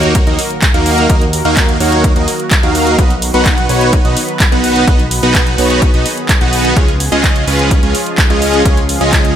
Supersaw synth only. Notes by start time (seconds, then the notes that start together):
Already playing: A#3 D#4 F#4 A#4 C#5
0.27 A#3 D#4 F#4 A#4 D#5
0.74 A#3 D#4 F#4 A#4 F5
1.09 A#3 D#4 F#4 A#4 D#5
1.45 A#3 D#4 F#4 A#4 F5
1.80 A#3 D#4 F#4 A#4 C#5
2.16 A#3 D#4 F#4 A#4 D#5
2.63 A#3 D#4 F#4 A#4 F5
2.98 B3 D#4 F#4 B4 D#5
3.34 B3 D#4 F#4 B4 F#5
3.69 B3 D#4 F#4 B4 C#5
4.05 B3 D#4 F#4 B4 D#5
4.52 B3 D#4 F#4 B4 F#5
4.87 B3 F#4 B4
5.23 B3 D#4 F#4 B4 F#5
5.58 B3 D#4 F#4 B4 C#5
5.94 B3 D#4 F#4 B4 D#5
6.41 B3 D#4 F#4 B4 F#5
6.76 G#3 C#4 F4 G#4 C#5
7.12 G#3 C#4 F4 G#4 D#5
7.47 G#3 C#4 F4 G#4 B4
7.83 G#3 C#4 F4 G#4 C#5
8.30 G#3 C#4 F4 G#4 D#5
8.65 G#3 C#4 G#4 C#5
9.01 G#3 C#4 F4 G#4 D#5